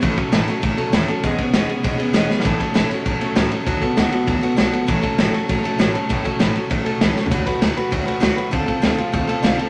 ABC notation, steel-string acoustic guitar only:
X:1
M:4/4
L:1/8
Q:1/4=198
K:A
V:1 name="Steel-string acoustic guitar"
[A,,E,F,A,CA] [F,A,CA] [A,,E,F,A,CA] [F,A,CA] [F,A,CA] [F,A,CA] [A,,E,F,A,CA] [F,A,CA] | [E,G,B,CG] [B,CG] [E,G,B,CG] [B,CG] [G,B,CG] [B,CG] [E,G,B,CG] [B,CG] | [A,,E,F,A,CA] [F,A,CA] [A,,E,F,A,CA] [F,A,CA] [F,A,CA] [F,A,CA] [A,,E,F,A,CA] [F,A,CA] | [D,F,B,FA] [B,FA] [D,F,B,FA] [B,FA] [F,B,FA] [B,FA] [D,F,B,FA] [B,FA] |
[A,,E,F,A,CA] [F,A,CA] [A,,E,F,A,CA] [F,A,CA] [F,A,CA] [F,A,CA] [A,,E,F,A,CA] [F,A,CA] | [A,,E,F,A,CA] [F,A,CA] [A,,E,F,A,CA] [F,A,CA] [F,A,CA] [F,A,CA] [A,,E,F,A,CA] [F,A,CA] | [D,F,A,FB] [A,FB] [D,F,A,FB] [A,FB] [F,A,FB] [A,FB] [D,F,A,FB] [A,FB] | [D,A,=C=FA] [CFA] [D,A,CFA] [CFA] [A,CFA] [CFA] [D,A,CFA] [CFA] |]